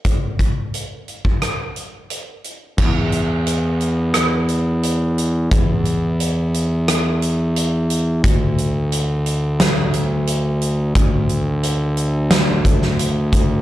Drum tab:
CC |----------------|x---------------|----------------|----------------|
HH |x-x-x-x-x-x-x-x-|--x-x-x-x-x-x-x-|x-x-x-x-x-x-x-x-|x-x-x-x-x-x-x-x-|
SD |--------r-------|--------r-------|--------r-------|--------o-------|
BD |o-o----o--------|o---------------|o---------------|o---------------|

CC |----------------|
HH |x-x-x-x-x-x-x-x-|
SD |--------o--o----|
BD |o---------o---o-|